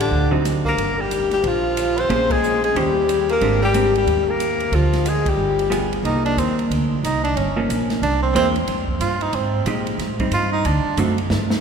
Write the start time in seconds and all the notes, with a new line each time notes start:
0.00 D3 D4, ride
0.11 D2
0.31 D3 F#3 C4 D#4
0.45 snare, hi-hat pedal, ride
0.65 A#3 A#4, kick
0.77 G1, ride
0.98 G3 G4
1.11 hi-hat pedal, ride
1.31 G3 G4, snare, ride
1.43 A#1 F3, ride
1.48 F4
1.77 hi-hat pedal, ride
1.97 C4 C5, ride
2.09 A#1 A#3 C#4 G#4 C5, ride
2.30 G#3 G#4, kick, ride
2.43 hi-hat pedal
2.64 G#3 G#4, ride
2.75 D#2 D#3 G3 C#4 G4 C5, ride
3.09 hi-hat pedal, ride
3.29 A#3 A#4, ride
3.41 G#1 G#3 C4 D4 G4, ride
3.62 G3 G4
3.74 G#3 C4 D4 G4, hi-hat pedal, ride
3.95 G3 G4, ride
4.06 D#2, ride
4.28 A#3 A#4
4.40 hi-hat pedal, ride
4.60 ride
4.72 D2 F3 F4, ride
4.93 snare, ride
5.06 G#3 G#4, hi-hat pedal, ride
5.26 G3 G4, kick, ride
5.37 G1
5.59 ride
5.70 G3 B3 F4 G#4, hi-hat pedal, ride
5.93 ride
6.03 C2 F3 A#3 D#4, ride
6.25 D4, ride
6.37 D#2 C4, hi-hat pedal, ride
6.59 ride
6.70 D2, ride
7.03 C2 D#4, hi-hat pedal, ride
7.24 D4, ride
7.36 G1 C#4, ride
7.56 F3 A#3 C#4
7.69 A#1, hi-hat pedal, ride
7.90 snare, ride
8.02 C2 D4, ride
8.22 C4
8.35 E2 G#3 A#3 C4 E4, hi-hat pedal, ride
8.56 ride
8.67 F2, ride
8.88 kick
9.00 G2 F4, hi-hat pedal, ride
9.21 D#4, ride
9.33 G#2 C4, ride
9.65 A#2 F3 G#3 D#4 G4, hi-hat pedal, ride
9.87 ride
9.98 A2, snare, ride
10.19 G3 C4 D#4, kick, ride
10.31 G2 F4, hi-hat pedal, ride
10.52 D#4
10.65 D2 D4, ride
10.84 muted upright bass stroke
10.97 F#2 D3 A3 C4 F#4, hi-hat pedal, ride
11.18 ride
11.30 G2, snare
11.50 snare